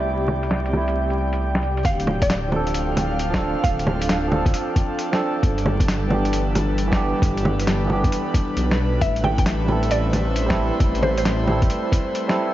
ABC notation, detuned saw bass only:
X:1
M:4/4
L:1/8
Q:"Swing 16ths" 1/4=134
K:Ddor
V:1 name="Detuned saw bass" clef=bass
C,,8 | D,,,4 D,,, D,,,2 z | D,,,4 z4 | G,,,4 G,,, G,,,2 z |
G,,,4 z2 B,,,2 | A,,,4 A,,, A,,,2 z | A,,,4 z4 |]